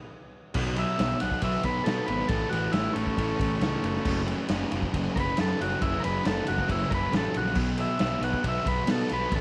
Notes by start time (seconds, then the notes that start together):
0.54 B1 B2 F#3 B3, kick, crash
0.76 B2 F#3 B3 E5, ride
0.99 B1 B2 F#3 B3, snare, ride
1.20 B1 B2 F#3 B3 F#5, ride
1.31 kick
1.42 B1 B2 F#3 B3 E5, kick, ride
1.63 B1 B2 F#3 B3 B4, kick, ride
1.84 B2 F#3 B3 A4, snare, ride
2.06 G#1 B2 F#3 B3 B4, ride
2.19 snare
2.28 A1 A2 E3 A4, kick, ride
2.32 A3
2.50 A1 A2 E3 F#4, ride
2.54 A3
2.72 A1 A2 E3 E4, snare, ride
2.76 A3
2.93 A1 A2 A3 C#4, ride
2.97 E3 A3
3.07 kick
3.18 A1 A2 E3 A3, kick, ride
3.40 A1 A2 E3 A3, kick, ride
3.60 C#2 A2 E3 A3, snare, ride
3.83 F#1 F#2 C#3 F#3, ride
3.96 snare
4.05 F#1 F#2 C#3 F#3, kick, crash
4.26 F#2 C#3 F#3, ride
4.48 F#1 F#2 C#3 F#3, snare, ride
4.71 F#1 F#2 C#3 F#3, ride
4.82 kick
4.94 F#1 F#2 C#3 F#3, kick, ride
5.16 F#1 F#2 C#3 F#3 A#4, kick, ride
5.20 B4
5.37 F#2 C#3 F#3 A4, snare, ride
5.60 F#1 F#2 C#3 F#3 F#4, ride
5.80 F#1 F#2 C#3 F#3 E4, kick, ride
6.00 F#2 C#3 A#4
6.04 F#1 F#3 B4, ride
6.23 F#1 F#2 C#3 F#3 A4, snare, ride
6.45 F#2 C#3 F#3 F#4, ride
6.49 F#1
6.58 kick
6.67 F#1 F#2 C#3 F#3, kick, ride
6.71 E4
6.83 snare
6.89 F#1 F#2 C#3 F#3 A#4, kick, ride
6.95 B4
7.11 A1 F#2 C#3 F#3, snare, ride
7.17 A4
7.34 A#1 F#2 C#3 F#3 F#4, ride
7.47 snare
7.55 B1 B2 F#3 B3, kick, crash
7.77 B2 F#3 B3 E5, ride
7.99 B1 B2 F#3 B3, snare, ride
8.20 B1 B2 F#3 B3 F#5, ride
8.33 kick
8.44 B1 B2 F#3 B3, kick, ride
8.48 E5
8.65 B1 B2 F#3 B3 B4, kick, ride
8.87 B2 F#3 B3, snare, ride
8.91 A4
9.09 B1 B2 F#3 B3 B4, ride
9.23 snare
9.32 A1 A2 E3 A3 A4, kick, ride